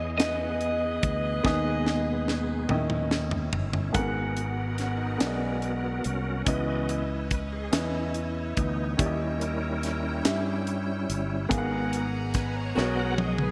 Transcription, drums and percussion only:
0.20 snare loud
0.20 closed hi-hat medium
0.61 closed hi-hat soft
1.03 kick medium
1.03 closed hi-hat soft
1.45 kick loud
1.45 snare soft
1.86 snare medium
2.28 snare medium
2.69 mid tom medium
2.90 mid tom medium
3.11 snare medium
3.31 floor tom medium
3.53 floor tom medium
3.73 floor tom medium
3.94 kick medium
3.94 closed hi-hat medium
4.37 closed hi-hat soft
4.78 snare soft
4.78 closed hi-hat soft
5.20 snare medium
5.20 closed hi-hat medium
5.62 closed hi-hat soft
6.04 closed hi-hat medium
6.46 kick medium
6.46 closed hi-hat medium
6.89 closed hi-hat medium
7.31 kick medium
7.31 closed hi-hat soft
7.73 snare loud
7.73 closed hi-hat medium
8.14 closed hi-hat soft
8.57 kick medium
8.57 closed hi-hat medium
8.99 kick loud
8.99 closed hi-hat medium
9.41 closed hi-hat medium
9.83 snare soft
9.83 closed hi-hat medium
10.25 snare loud
10.25 closed hi-hat medium
10.67 closed hi-hat soft
11.10 closed hi-hat medium
11.51 kick loud
11.51 closed hi-hat medium
11.93 closed hi-hat medium
12.34 kick medium
12.34 snare soft
12.34 closed hi-hat medium
12.78 snare soft
13.18 high tom medium
13.38 mid tom medium

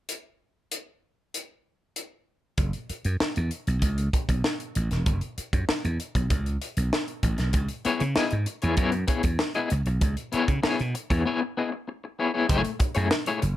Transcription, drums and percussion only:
0.09 closed hi-hat medium
0.72 closed hi-hat medium
1.34 closed hi-hat medium
1.96 closed hi-hat medium
2.58 kick loud
2.58 closed hi-hat medium
2.73 closed hi-hat soft
2.90 closed hi-hat medium
3.05 closed hi-hat soft
3.20 snare loud
3.36 closed hi-hat soft
3.51 closed hi-hat medium
3.67 closed hi-hat soft
3.82 kick medium
3.82 closed hi-hat medium
3.98 closed hi-hat soft
4.13 kick medium
4.13 closed hi-hat medium
4.29 kick medium
4.29 closed hi-hat medium
4.44 snare loud
4.60 closed hi-hat soft
4.75 closed hi-hat medium
4.91 snare soft
4.91 closed hi-hat soft
5.06 kick loud
5.06 closed hi-hat medium
5.21 closed hi-hat soft
5.38 closed hi-hat medium
5.53 kick medium
5.53 closed hi-hat soft
5.69 snare loud
5.85 closed hi-hat medium
6.00 closed hi-hat medium
6.15 kick medium
6.15 closed hi-hat medium
6.30 kick medium
6.30 closed hi-hat medium
6.46 closed hi-hat soft
6.62 closed hi-hat medium
6.77 closed hi-hat medium
6.93 snare medium
7.08 closed hi-hat soft
7.23 kick medium
7.23 closed hi-hat medium
7.38 snare soft
7.38 closed hi-hat soft
7.53 kick loud
7.53 closed hi-hat medium
7.69 closed hi-hat soft
7.85 closed hi-hat medium
8.00 closed hi-hat soft
8.16 snare loud
8.31 closed hi-hat medium
8.46 closed hi-hat medium
8.62 closed hi-hat soft
8.77 kick medium
8.77 closed hi-hat medium
8.92 closed hi-hat medium
9.08 kick medium
9.08 closed hi-hat medium
9.23 kick medium
9.23 closed hi-hat medium
9.39 snare loud
9.54 closed hi-hat soft
9.70 closed hi-hat medium
9.86 closed hi-hat soft
10.01 kick medium
10.01 closed hi-hat medium
10.17 closed hi-hat soft
10.33 closed hi-hat medium
10.48 kick medium
10.48 closed hi-hat soft
10.63 snare loud
10.79 closed hi-hat soft
10.95 closed hi-hat medium
11.10 kick medium
11.10 closed hi-hat soft
12.49 kick loud
12.49 closed hi-hat medium
12.65 closed hi-hat soft
12.80 kick medium
12.80 closed hi-hat medium
12.95 closed hi-hat soft
13.11 snare loud
13.26 closed hi-hat medium
13.42 closed hi-hat medium

